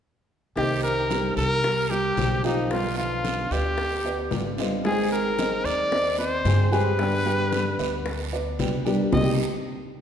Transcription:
0.55 upright bass C2, nylon-string guitar C3 D#3 A#3 C4 G4, grand piano D#3 D#4 D#5, trumpet G4, high bongo, long guiro
0.83 trumpet A#4, high bongo
1.11 grand piano G3 G4 A#4, high bongo, short guiro
1.37 upright bass C2, trumpet A#4, short guiro
1.64 grand piano G3 G4 A#4, muted nylon-string guitar stroke, high bongo, long guiro
1.91 grand piano G3 G4 A#4, trumpet G4, high bongo
2.17 upright bass B1, nylon-string guitar D#3 A#3 C4 G4, high bongo, low bongo, short guiro
2.43 nylon-string guitar D#3 A#3 C4 G4, grand piano F3 F4 F5, trumpet D#4, high bongo, short guiro
2.70 nylon-string guitar B2 D3 G3 B3 F4, trumpet F4, high bongo, long guiro
2.97 grand piano F3 F4 F5, trumpet F4, high bongo
3.25 high bongo, short guiro
3.51 upright bass D2, grand piano B3 B4 D5, trumpet G4, short guiro
3.78 muted nylon-string guitar stroke, high bongo, long guiro
4.05 grand piano B3 B4 D5, high bongo
4.31 upright bass G#1, nylon-string guitar D3 G3 B3 F4, high bongo, low bongo, short guiro
4.58 nylon-string guitar D3 G3 B3 F4, grand piano C4 C5 D#5, high bongo, short guiro
4.84 nylon-string guitar D#3 G#3 C4 G#4, grand piano G#3 G#4 G#5, trumpet G#4, high bongo, long guiro
5.12 trumpet A#4, high bongo
5.38 grand piano C4 C5 D#5, high bongo, short guiro
5.64 upright bass D#2, trumpet D5, short guiro
5.91 grand piano C4 C5 D#5, muted nylon-string guitar stroke, high bongo, long guiro
6.18 grand piano C4 D#5, trumpet C5, high bongo
6.45 upright bass G2, nylon-string guitar D#3 G#3 C4 G#4, high bongo, low bongo, short guiro
6.72 grand piano G3 G4 G5, nylon-string guitar G#3 C4 G#4, trumpet B4, high bongo, short guiro
6.99 nylon-string guitar D3 G3 B3 D4 G4, high bongo, long guiro
7.26 grand piano G3 G4 G5, high bongo
7.52 high bongo, short guiro
7.78 upright bass D2, grand piano B3 B4 D5, short guiro
8.05 muted nylon-string guitar stroke, high bongo, long guiro
8.32 grand piano B3 B4 D5, high bongo
8.59 upright bass C2, nylon-string guitar G3 B3 D4 G4, high bongo, low bongo, short guiro
8.85 grand piano G3 G4 A#4, nylon-string guitar G3 B3 D4 G4, high bongo, short guiro
9.12 upright bass C2, nylon-string guitar C3 D#3 A#3 C4 G4, grand piano C3 G3 A#3 C4 D#4 G4, trumpet D#5, low bongo, long guiro

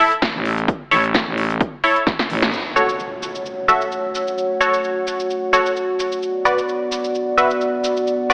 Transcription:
0.00 synth stab E4 A4 E5
0.12 closed hi-hat
0.22 kick, snare
0.35 fm bass A1
0.45 open hi-hat
0.58 closed hi-hat
0.68 kick, closed hi-hat
0.91 fm bass A1, synth stab E4 A4 C#5, open hi-hat
1.04 closed hi-hat
1.14 kick, snare, closed hi-hat
1.27 fm bass A1
1.38 open hi-hat
1.50 closed hi-hat
1.61 kick, closed hi-hat
1.84 synth stab E4 A4 C#5, open hi-hat
1.96 closed hi-hat
2.07 kick, snare, closed hi-hat
2.19 snare
2.30 fm bass A1, open hi-hat
2.42 snare, closed hi-hat
2.53 analog synth pad A3 F#4 C#5 F#5, impact, shaker
2.76 synth stab F#4 A4 C#5, shaker
2.89 shaker
3.00 shaker
3.23 shaker
3.35 shaker
3.46 shaker
3.68 synth stab F#4 A4 E5, shaker
3.81 shaker
3.92 shaker
4.15 shaker
4.27 shaker
4.38 shaker
4.61 synth stab F#4 A4 C#5, shaker
4.74 shaker
4.84 shaker
5.07 shaker
5.20 shaker
5.30 shaker
5.53 synth stab F#4 A4 C#5, shaker
5.66 shaker
5.76 shaker
6.00 shaker
6.12 shaker
6.22 analog synth pad B3 D5 F#5, shaker
6.45 synth stab F#4 B4 D5, shaker
6.58 shaker
6.69 shaker
6.92 shaker
7.04 shaker
7.15 shaker
7.37 synth stab F#4 B4 E5, shaker
7.51 shaker
7.61 shaker
7.84 shaker
7.97 shaker
8.07 shaker
8.30 synth stab F#4 B4 D5, shaker

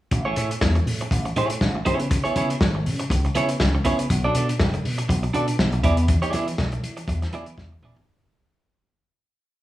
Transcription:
0.11 slap bass A1, muted clean electric guitar stroke, kick, closed hi-hat
0.25 clean electric guitar A3 E4 G#4 C#5
0.36 slap bass A2, clean electric guitar A3 E4 G#4 C#5, closed hi-hat
0.51 muted clean electric guitar stroke, closed hi-hat
0.61 slap bass E2, muted clean electric guitar stroke, kick, snare
0.75 muted clean electric guitar stroke, closed hi-hat
0.86 slap bass A2, open hi-hat
1.01 muted clean electric guitar stroke, closed hi-hat
1.11 slap bass A1, muted clean electric guitar stroke, kick, closed hi-hat
1.25 muted clean electric guitar stroke, closed hi-hat
1.36 slap bass A2, clean electric guitar A3 E4 G#4 C#5, closed hi-hat
1.50 muted clean electric guitar stroke, closed hi-hat
1.61 slap bass A1, muted clean electric guitar stroke, kick, snare
1.75 muted clean electric guitar stroke
1.85 slap bass C#3, clean electric guitar B3 E4 G#4 C#5, kick, closed hi-hat
2.00 muted clean electric guitar stroke, closed hi-hat
2.10 muted clean electric guitar stroke, kick, closed hi-hat
2.24 clean electric guitar B3 E4 G#4 C#5, closed hi-hat
2.36 slap bass C#3, clean electric guitar B3 E4 G#4 C#5, closed hi-hat
2.50 muted clean electric guitar stroke, closed hi-hat
2.60 slap bass G#1, muted clean electric guitar stroke, kick, snare
2.75 muted clean electric guitar stroke
2.86 slap bass C#3, open hi-hat
3.00 muted clean electric guitar stroke, closed hi-hat
3.10 slap bass C#2, muted clean electric guitar stroke, kick, closed hi-hat
3.25 muted clean electric guitar stroke, closed hi-hat
3.35 slap bass C#3, clean electric guitar B3 E4 G#4 C#5, closed hi-hat
3.49 muted clean electric guitar stroke, closed hi-hat
3.60 slap bass C#2, kick, snare
3.75 muted clean electric guitar stroke
3.85 slap bass C#3, clean electric guitar B3 E4 G#4 C#5, kick, closed hi-hat
3.99 muted clean electric guitar stroke, closed hi-hat
4.10 slap bass B1, muted clean electric guitar stroke, kick, closed hi-hat
4.24 clean electric guitar D4 F#4 A4 D5
4.35 slap bass B2, clean electric guitar D4 F#4 A4 D5, closed hi-hat
4.49 muted clean electric guitar stroke, closed hi-hat
4.60 slap bass F#1, muted clean electric guitar stroke, kick, snare
4.74 muted clean electric guitar stroke, closed hi-hat
4.85 slap bass B2, open hi-hat
4.98 muted clean electric guitar stroke, closed hi-hat
5.09 slap bass B1, muted clean electric guitar stroke, kick, closed hi-hat
5.23 muted clean electric guitar stroke, closed hi-hat
5.34 slap bass B2, clean electric guitar D4 F#4 A4 D5, closed hi-hat
5.48 muted clean electric guitar stroke, closed hi-hat
5.59 slap bass B1, muted clean electric guitar stroke, kick, snare
5.72 muted clean electric guitar stroke, closed hi-hat
5.84 slap bass E2, clean electric guitar B3 E4 G#4 D5, kick, closed hi-hat
5.97 muted clean electric guitar stroke, closed hi-hat
6.08 muted clean electric guitar stroke, kick, closed hi-hat
6.22 clean electric guitar B3 E4 G#4 D5, closed hi-hat
6.33 slap bass E3, clean electric guitar B3 E4 G#4 D5, closed hi-hat
6.47 muted clean electric guitar stroke, closed hi-hat
6.58 slap bass B1, muted clean electric guitar stroke, kick, snare
6.72 muted clean electric guitar stroke, closed hi-hat
6.83 slap bass E3, closed hi-hat
6.97 muted clean electric guitar stroke, closed hi-hat
7.08 slap bass E2, muted clean electric guitar stroke, kick, closed hi-hat
7.22 muted clean electric guitar stroke, snare, closed hi-hat
7.33 slap bass E3, clean electric guitar B3 E4 G#4 D5, closed hi-hat
7.46 muted clean electric guitar stroke, closed hi-hat
7.58 slap bass E2, muted clean electric guitar stroke, kick, snare
7.72 muted clean electric guitar stroke
7.82 slap bass E3, clean electric guitar B3 E4 G#4 D5, mid tom
7.96 muted clean electric guitar stroke, floor tom

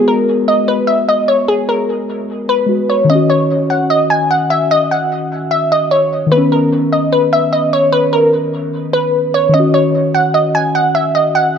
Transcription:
Already playing: synth keys G#3 B3 F#4
0.08 synth pluck A#4
0.48 synth pluck D#5
0.68 synth pluck B4
0.87 synth pluck E5
1.09 synth pluck D#5
1.28 synth pluck C#5
1.48 synth pluck G#4
1.69 synth pluck A#4
2.49 synth pluck B4
2.66 synth keys G#3 F#4
2.72 synth keys B4
2.90 synth pluck C#5
3.05 synth keys D#3
3.10 synth keys C#4, synth pluck D#5
3.15 synth keys F#4
3.30 synth pluck C#5
3.70 synth pluck F#5
3.90 synth pluck D#5
4.10 synth pluck G#5
4.31 synth pluck F#5
4.50 synth pluck E5
4.71 synth pluck D#5
4.91 synth pluck F#5
5.51 synth pluck E5
5.72 synth pluck D#5
5.91 synth pluck C#5
6.27 synth keys D#3
6.32 synth keys B3, synth pluck B4
6.37 synth keys C#4
6.52 synth pluck A#4
6.93 synth pluck D#5
7.13 synth pluck B4
7.33 synth pluck E5
7.53 synth pluck D#5
7.73 synth pluck C#5
7.92 synth pluck B4
8.13 synth pluck A#4
8.93 synth pluck B4
9.34 synth pluck C#5
9.49 synth keys D#3
9.54 synth keys C#4, synth pluck D#5
9.60 synth keys F#4
9.74 synth pluck C#5
10.14 synth pluck F#5
10.34 synth pluck D#5
10.55 synth pluck G#5
10.75 synth pluck F#5
10.95 synth pluck E5
11.15 synth pluck D#5
11.35 synth pluck F#5

